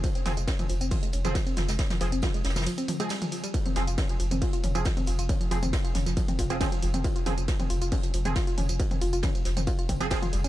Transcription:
<<
  \new Staff \with { instrumentName = "Synth arpeggio sound" } { \time 4/4 \key f \minor \tempo 4 = 137 f16 c'16 f'16 aes16 des'16 f16 f16 c'16 f'16 aes16 des'16 f16 f16 c'16 f'16 aes16 | des'16 f16 f16 c'16 f'16 aes16 des'16 f16 f16 c'16 f16 aes16 g16 f16 f16 g16 | f16 c'16 f'16 f'16 des'16 f16 f16 c'16 f'16 f'16 des'16 f16 f16 c'16 f'16 f'16 | des'16 f16 f16 c'16 f'16 f'16 des'16 f16 f16 c'16 f'16 f'16 des'16 f16 f16 c'16 |
f'16 f'16 des'16 f16 f16 c'16 f'16 f'16 des'16 f16 f16 c'16 f'16 f'16 des'16 f16 | f16 c'16 f'16 f'16 des'16 f16 f16 c'16 f'16 f'16 c'16 f16 c'16 f'16 g16 des'16 | }
  \new Staff \with { instrumentName = "Synth stab" } { \time 4/4 \key f \minor r8 <f c' aes'>16 r2 <f c' aes'>16 r4 | r8 <f c' aes'>16 r2 <f c' aes'>16 r4 | r8 <f c' aes'>16 r2 <f c' aes'>16 r4 | r8 <f c' aes'>16 r2 <f c' aes'>16 <f c' aes'>16 r8. |
r8 <f c' aes'>16 r2 <f c' aes'>16 r4 | r2 r8. <f c' aes'>16 <f c' aes'>16 r8. | }
  \new Staff \with { instrumentName = "Sub bass" } { \clef bass \time 4/4 \key f \minor r8 f,,16 f,,16 r8 f,,16 f,,16 r8 f,,16 f,,16 r8 f,,16 f,,16 | r8 f,,16 f,,16 r8 f,,16 f,,16 r2 | r8 f,,16 f,,16 r8 f,,16 f,,16 r8 f,,16 f,,16 r8 f,,16 f,,16 | r8 f,,16 f,,16 r8 f,,16 f,,16 r8 f,,16 f,,16 r8 f,,16 f,,16 |
r8 f,,16 f,,16 r8 f,,16 f,,16 r8 f,,16 f,,16 r8 f,,16 f,,16 | r8 f,,16 f,,16 r8 f,,16 f,,16 r8 f,,16 f,,16 r8 f,,16 f,,16 | }
  \new DrumStaff \with { instrumentName = "Drums" } \drummode { \time 4/4 <hh bd cymr tamb>16 <hh tamb>16 <hho sn tamb toml>16 <hh tamb>16 <hh bd cymr sn tamb>16 <hh tamb toml>16 <hho tamb>16 <hh tamb>16 <hh hho bd cymr tamb toml>16 <hh tamb>16 <hho tamb>16 <hh tamb toml>16 <hh bd cymr sn tamb>16 <hh tamb>16 <hho sn tamb toml>16 <hh sn tamb>16 | <hh bd cymr sn tamb>16 <hh sn tamb toml>16 <hho tamb>16 <hh tamb>16 <hh bd cymr sn tamb toml>16 <hh tamb>16 <hho sn tamb>32 <sn tamb>32 <hh sn tamb toml>32 <sn tamb>32 <hh cymr tamb>16 <hh tamb>16 <hho tamb toml>16 <hh tamb>16 <hh cymr sn tamb>16 <hh tamb toml>16 <hho tamb>16 <hh tamb>16 | <hh bd cymr tamb>16 <hh tamb toml>16 <hho sn tamb>16 <hh tamb>16 <hh bd cymr sn tamb toml>16 <hh tamb>16 <hho tamb>16 <hh tamb toml>16 <hh hho bd cymr tamb>16 <hh tamb>16 <hho tamb toml>16 <hh tamb>16 <hh bd cymr sn tamb>16 <hh tamb toml>16 <hho tamb>16 <hh tamb>16 | <hh bd cymr tamb toml>16 <hh tamb>16 <hho tamb>16 <hh tamb toml>16 <hh bd cymr sn tamb>16 <hh tamb>16 <hho sn tamb toml>16 <hh sn tamb>16 <hh bd cymr tamb>16 <hh tamb toml>16 <hho bd tamb>16 <hh tamb>16 <hh bd cymr sn tamb toml>16 <hh tamb>16 <hho tamb>16 <hh tamb toml>16 |
<hh bd cymr tamb>16 <hh tamb>16 <hho sn tamb toml>16 <hh tamb>16 <hh bd cymr sn tamb>16 <hh tamb toml>16 <hho tamb>16 <hh tamb>16 <hh hho bd cymr tamb toml>16 <hh tamb>16 <hho tamb>16 <hh tamb toml>16 <hh bd cymr sn tamb>16 <hh tamb>16 <hho tamb toml>16 <hh tamb>16 | <hh bd cymr tamb>16 <hh tamb toml>16 <hho tamb>16 <hh tamb>16 <hh bd cymr sn tamb toml>16 <hh tamb>16 <hho sn tamb>16 <hh sn tamb toml>16 <hh bd cymr tamb>16 <hh tamb>16 <hho bd tamb toml>16 <hh tamb>16 <hh bd cymr sn tamb>16 <hh tamb toml>16 <hho tamb>16 <hh tamb>16 | }
>>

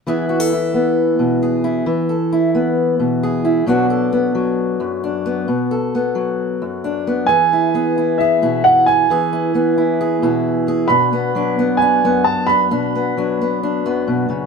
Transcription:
<<
  \new Staff \with { instrumentName = "Upright piano" } { \time 4/4 \key e \mixolydian \tempo 4 = 133 r1 | r1 | r1 | r1 |
gis''2 e''4 fis''8 gis''8~ | gis''2.~ gis''8 r8 | b''2 gis''4 a''8 b''8~ | b''2.~ b''8 r8 | }
  \new Staff \with { instrumentName = "Steel-string acoustic guitar" } { \time 4/4 \key e \mixolydian << { <b e' gis'>8 fis'16 a'16 e'2 gis'8 e'8 | r8 a'8 e'2 gis'8 e'8 | <fis b d' fis'>8 a'8 b2 d'8 b8 | r8 a'8 b2 d'8 b8 |
gis'8 e'8 gis'8 e'8 gis'8 e'4 gis'8 | gis'8 e'8 gis'8 e'8 gis'8 e'4 gis'8 | d'8 b8 d'8 b8 d'8 b4 d'8 | d'8 b8 d'8 b8 d'8 b4. | } \\ { e4. b4 b,4. | e4. b4 b,4. | b,4. fis4 fis,4. | b,4. fis4 fis,4. |
e4 b4. b,4. | e4 b4. b,4. | b,4 fis4. fis,4. | b,4 fis4. fis,8 b,8 cis8 | } >> }
>>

